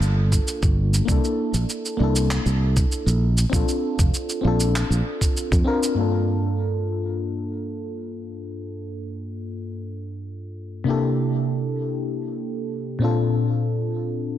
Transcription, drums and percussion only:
0.02 shaker soft
0.32 kick medium
0.32 shaker medium
0.47 shaker medium
0.63 kick loud
0.63 shaker soft
0.94 shaker medium
1.08 kick loud
1.08 shaker medium
1.24 shaker soft
1.54 shaker medium
1.69 shaker medium
1.85 shaker soft
2.16 shaker medium
2.31 clap medium
2.31 shaker medium
2.46 shaker soft
2.77 kick loud
2.77 shaker medium
2.92 shaker soft
3.07 shaker soft
3.38 shaker medium
3.53 kick loud
3.53 shaker medium
3.68 shaker soft
3.99 kick loud
3.99 shaker medium
4.14 shaker medium
4.29 shaker soft
4.60 shaker medium
4.76 clap medium
4.76 shaker medium
4.92 shaker soft
5.21 kick medium
5.21 shaker medium
5.37 shaker medium
5.52 kick loud
5.52 shaker soft
5.83 shaker medium

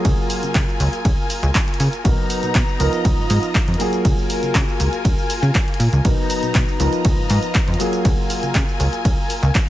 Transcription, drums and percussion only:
0.05 kick loud
0.05 closed hi-hat medium
0.05 ride medium
0.05 shaker soft
0.30 open hi-hat loud
0.30 shaker medium
0.43 closed hi-hat medium
0.43 shaker soft
0.55 kick loud
0.55 clap loud
0.55 closed hi-hat medium
0.55 ride medium
0.55 shaker soft
0.69 shaker soft
0.80 open hi-hat loud
0.80 shaker medium
0.93 closed hi-hat medium
0.93 shaker soft
1.05 kick loud
1.05 closed hi-hat medium
1.05 ride medium
1.05 shaker soft
1.30 open hi-hat loud
1.30 shaker medium
1.43 closed hi-hat medium
1.43 shaker soft
1.55 kick loud
1.55 clap loud
1.55 closed hi-hat medium
1.55 ride medium
1.55 shaker soft
1.68 closed hi-hat medium
1.74 closed hi-hat medium
1.80 open hi-hat loud
1.80 shaker medium
1.93 closed hi-hat medium
1.93 shaker soft
2.05 kick loud
2.05 closed hi-hat medium
2.05 ride medium
2.05 shaker soft
2.30 open hi-hat loud
2.30 shaker medium
2.43 closed hi-hat medium
2.43 shaker soft
2.55 kick loud
2.55 clap loud
2.55 closed hi-hat medium
2.55 ride medium
2.55 shaker soft
2.69 shaker soft
2.80 open hi-hat loud
2.80 shaker medium
2.93 closed hi-hat medium
2.93 shaker soft
3.05 kick loud
3.05 closed hi-hat medium
3.05 ride medium
3.05 shaker soft
3.30 open hi-hat loud
3.30 shaker medium
3.43 closed hi-hat medium
3.43 shaker soft
3.55 kick loud
3.55 clap loud
3.55 closed hi-hat medium
3.55 ride medium
3.55 shaker soft
3.68 closed hi-hat soft
3.74 closed hi-hat medium
3.80 open hi-hat loud
3.80 shaker medium
3.93 closed hi-hat medium
3.93 shaker soft
4.05 kick loud
4.05 closed hi-hat medium
4.05 ride medium
4.05 shaker soft
4.18 shaker soft
4.30 open hi-hat loud
4.30 shaker medium
4.43 closed hi-hat medium
4.43 shaker soft
4.55 kick loud
4.55 clap loud
4.55 closed hi-hat medium
4.55 ride medium
4.55 shaker soft
4.68 shaker soft
4.80 open hi-hat loud
4.80 shaker medium
4.93 closed hi-hat medium
4.93 shaker soft
5.05 kick loud
5.05 closed hi-hat medium
5.05 ride medium
5.05 shaker soft
5.19 shaker soft
5.30 open hi-hat loud
5.30 shaker medium
5.43 closed hi-hat soft
5.43 shaker soft
5.55 kick loud
5.55 clap loud
5.55 closed hi-hat medium
5.55 ride medium
5.55 shaker soft
5.68 closed hi-hat soft
5.74 closed hi-hat medium
5.80 open hi-hat loud
5.80 shaker medium
5.93 closed hi-hat soft
5.93 shaker soft
6.05 kick loud
6.05 closed hi-hat medium
6.05 ride medium
6.05 shaker soft
6.30 open hi-hat loud
6.30 shaker medium
6.43 closed hi-hat medium
6.43 shaker soft
6.55 kick loud
6.55 clap loud
6.55 closed hi-hat medium
6.55 ride medium
6.55 shaker soft
6.68 shaker soft
6.80 open hi-hat loud
6.80 shaker medium
6.93 closed hi-hat soft
6.93 shaker soft
7.05 kick loud
7.05 closed hi-hat medium
7.05 ride medium
7.05 shaker soft
7.30 open hi-hat loud
7.30 shaker medium
7.43 closed hi-hat medium
7.43 shaker soft
7.55 kick loud
7.55 clap loud
7.55 closed hi-hat medium
7.55 ride medium
7.55 shaker soft
7.68 closed hi-hat soft
7.74 closed hi-hat medium
7.80 open hi-hat loud
7.80 shaker medium
7.93 closed hi-hat medium
7.93 shaker soft
8.05 kick loud
8.05 closed hi-hat medium
8.05 ride medium
8.05 shaker soft
8.30 open hi-hat loud
8.30 shaker medium
8.43 closed hi-hat medium
8.43 shaker soft
8.55 kick loud
8.55 clap loud
8.55 closed hi-hat medium
8.55 ride medium
8.55 shaker soft
8.69 shaker soft
8.80 open hi-hat loud
8.80 shaker medium
8.93 closed hi-hat medium
8.93 shaker soft
9.05 kick loud
9.05 closed hi-hat medium
9.05 ride medium
9.05 shaker soft
9.30 open hi-hat loud
9.30 shaker medium
9.43 closed hi-hat medium
9.43 shaker soft
9.55 kick loud
9.55 clap loud
9.55 closed hi-hat medium
9.55 ride medium
9.55 shaker soft

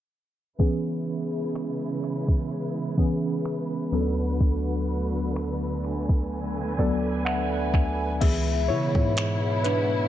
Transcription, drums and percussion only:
0.60 kick loud
1.55 finger snap loud
2.28 kick medium
2.98 kick medium
3.46 finger snap loud
4.41 kick loud
5.36 finger snap loud
6.09 kick loud
6.79 kick medium
7.26 finger snap loud
7.74 kick medium
8.21 kick loud
8.21 closed hi-hat medium
8.21 crash medium
8.95 kick medium
9.17 finger snap loud
9.17 closed hi-hat medium
9.65 closed hi-hat medium

